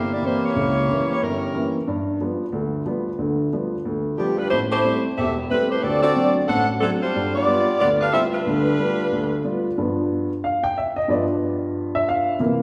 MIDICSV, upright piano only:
0, 0, Header, 1, 2, 480
1, 0, Start_track
1, 0, Tempo, 328767
1, 823, Time_signature, 4, 2, 24, 8
1, 18430, End_track
2, 0, Start_track
2, 0, Title_t, "Upright piano"
2, 0, Program_c, 0, 0
2, 0, Note_on_c, 0, 31, 61
2, 278, Note_off_c, 0, 31, 0
2, 329, Note_on_c, 0, 52, 42
2, 340, Note_on_c, 0, 58, 39
2, 353, Note_on_c, 0, 60, 44
2, 650, Note_off_c, 0, 52, 0
2, 656, Note_off_c, 0, 58, 0
2, 662, Note_off_c, 0, 60, 0
2, 819, Note_on_c, 0, 37, 56
2, 1234, Note_off_c, 0, 37, 0
2, 1302, Note_on_c, 0, 58, 38
2, 1303, Note_on_c, 0, 52, 44
2, 1319, Note_on_c, 0, 61, 48
2, 1617, Note_off_c, 0, 58, 0
2, 1618, Note_off_c, 0, 52, 0
2, 1625, Note_off_c, 0, 61, 0
2, 1780, Note_on_c, 0, 31, 60
2, 2194, Note_off_c, 0, 31, 0
2, 2252, Note_on_c, 0, 52, 45
2, 2262, Note_on_c, 0, 58, 40
2, 2269, Note_on_c, 0, 61, 50
2, 2572, Note_off_c, 0, 52, 0
2, 2577, Note_off_c, 0, 58, 0
2, 2581, Note_off_c, 0, 61, 0
2, 2737, Note_on_c, 0, 43, 62
2, 3153, Note_off_c, 0, 43, 0
2, 3222, Note_on_c, 0, 53, 42
2, 3227, Note_on_c, 0, 55, 41
2, 3233, Note_on_c, 0, 59, 49
2, 3537, Note_off_c, 0, 53, 0
2, 3540, Note_off_c, 0, 55, 0
2, 3543, Note_off_c, 0, 59, 0
2, 3687, Note_on_c, 0, 38, 60
2, 3688, Note_on_c, 0, 50, 61
2, 4107, Note_off_c, 0, 38, 0
2, 4108, Note_off_c, 0, 50, 0
2, 4172, Note_on_c, 0, 53, 43
2, 4173, Note_on_c, 0, 55, 42
2, 4185, Note_on_c, 0, 59, 51
2, 4492, Note_off_c, 0, 53, 0
2, 4493, Note_off_c, 0, 55, 0
2, 4499, Note_off_c, 0, 59, 0
2, 4650, Note_on_c, 0, 38, 57
2, 4654, Note_on_c, 0, 50, 61
2, 5069, Note_off_c, 0, 38, 0
2, 5071, Note_off_c, 0, 50, 0
2, 5154, Note_on_c, 0, 53, 43
2, 5156, Note_on_c, 0, 59, 46
2, 5160, Note_on_c, 0, 55, 38
2, 5463, Note_off_c, 0, 53, 0
2, 5464, Note_off_c, 0, 59, 0
2, 5466, Note_off_c, 0, 55, 0
2, 5626, Note_on_c, 0, 38, 59
2, 6037, Note_off_c, 0, 38, 0
2, 6108, Note_on_c, 0, 53, 43
2, 6116, Note_on_c, 0, 55, 38
2, 6117, Note_on_c, 0, 59, 49
2, 6420, Note_off_c, 0, 53, 0
2, 6424, Note_off_c, 0, 55, 0
2, 6425, Note_off_c, 0, 59, 0
2, 6605, Note_on_c, 0, 33, 56
2, 7008, Note_off_c, 0, 33, 0
2, 7072, Note_on_c, 0, 55, 44
2, 7083, Note_on_c, 0, 57, 40
2, 7086, Note_on_c, 0, 60, 51
2, 7382, Note_off_c, 0, 55, 0
2, 7388, Note_off_c, 0, 57, 0
2, 7389, Note_off_c, 0, 60, 0
2, 7554, Note_on_c, 0, 28, 60
2, 7558, Note_on_c, 0, 40, 62
2, 7962, Note_off_c, 0, 28, 0
2, 7964, Note_off_c, 0, 40, 0
2, 8040, Note_on_c, 0, 55, 43
2, 8044, Note_on_c, 0, 60, 47
2, 8047, Note_on_c, 0, 57, 39
2, 8346, Note_off_c, 0, 55, 0
2, 8348, Note_off_c, 0, 60, 0
2, 8350, Note_off_c, 0, 57, 0
2, 8519, Note_on_c, 0, 38, 55
2, 8924, Note_off_c, 0, 38, 0
2, 8996, Note_on_c, 0, 54, 46
2, 9000, Note_on_c, 0, 60, 41
2, 9007, Note_on_c, 0, 62, 48
2, 9304, Note_off_c, 0, 54, 0
2, 9306, Note_off_c, 0, 60, 0
2, 9310, Note_off_c, 0, 62, 0
2, 9473, Note_on_c, 0, 33, 60
2, 9881, Note_off_c, 0, 33, 0
2, 9953, Note_on_c, 0, 54, 43
2, 9967, Note_on_c, 0, 60, 38
2, 9969, Note_on_c, 0, 62, 50
2, 10262, Note_off_c, 0, 54, 0
2, 10269, Note_off_c, 0, 60, 0
2, 10270, Note_off_c, 0, 62, 0
2, 10442, Note_on_c, 0, 43, 55
2, 10845, Note_off_c, 0, 43, 0
2, 10907, Note_on_c, 0, 55, 47
2, 10912, Note_on_c, 0, 59, 39
2, 10922, Note_on_c, 0, 65, 46
2, 11219, Note_off_c, 0, 55, 0
2, 11222, Note_off_c, 0, 59, 0
2, 11226, Note_off_c, 0, 65, 0
2, 11408, Note_on_c, 0, 38, 61
2, 11808, Note_off_c, 0, 38, 0
2, 11877, Note_on_c, 0, 55, 46
2, 11889, Note_on_c, 0, 59, 42
2, 11893, Note_on_c, 0, 65, 50
2, 12184, Note_off_c, 0, 55, 0
2, 12190, Note_off_c, 0, 59, 0
2, 12191, Note_off_c, 0, 65, 0
2, 12357, Note_on_c, 0, 50, 58
2, 12363, Note_on_c, 0, 38, 63
2, 12762, Note_off_c, 0, 50, 0
2, 12766, Note_off_c, 0, 38, 0
2, 12842, Note_on_c, 0, 55, 42
2, 12849, Note_on_c, 0, 59, 39
2, 12853, Note_on_c, 0, 65, 52
2, 13146, Note_off_c, 0, 55, 0
2, 13149, Note_off_c, 0, 59, 0
2, 13151, Note_off_c, 0, 65, 0
2, 13318, Note_on_c, 0, 38, 57
2, 13723, Note_off_c, 0, 38, 0
2, 13786, Note_on_c, 0, 55, 43
2, 13788, Note_on_c, 0, 59, 42
2, 13801, Note_on_c, 0, 65, 49
2, 14097, Note_off_c, 0, 55, 0
2, 14099, Note_off_c, 0, 59, 0
2, 14105, Note_off_c, 0, 65, 0
2, 14272, Note_on_c, 0, 43, 43
2, 14285, Note_on_c, 0, 53, 39
2, 14293, Note_on_c, 0, 59, 48
2, 15003, Note_off_c, 0, 43, 0
2, 15010, Note_off_c, 0, 53, 0
2, 15014, Note_off_c, 0, 59, 0
2, 15243, Note_on_c, 0, 77, 65
2, 15518, Note_off_c, 0, 77, 0
2, 15528, Note_on_c, 0, 79, 90
2, 15701, Note_off_c, 0, 79, 0
2, 15733, Note_on_c, 0, 76, 60
2, 16004, Note_off_c, 0, 76, 0
2, 16007, Note_on_c, 0, 75, 72
2, 16177, Note_on_c, 0, 43, 46
2, 16181, Note_off_c, 0, 75, 0
2, 16189, Note_on_c, 0, 53, 43
2, 16201, Note_on_c, 0, 59, 46
2, 16213, Note_on_c, 0, 74, 64
2, 16380, Note_off_c, 0, 74, 0
2, 17447, Note_on_c, 0, 76, 80
2, 17620, Note_off_c, 0, 76, 0
2, 17646, Note_on_c, 0, 77, 74
2, 18039, Note_off_c, 0, 43, 0
2, 18046, Note_off_c, 0, 53, 0
2, 18052, Note_off_c, 0, 59, 0
2, 18080, Note_off_c, 0, 77, 0
2, 18097, Note_on_c, 0, 48, 48
2, 18103, Note_on_c, 0, 52, 43
2, 18115, Note_on_c, 0, 58, 50
2, 18430, Note_off_c, 0, 48, 0
2, 18430, Note_off_c, 0, 52, 0
2, 18430, Note_off_c, 0, 58, 0
2, 18430, End_track
0, 0, End_of_file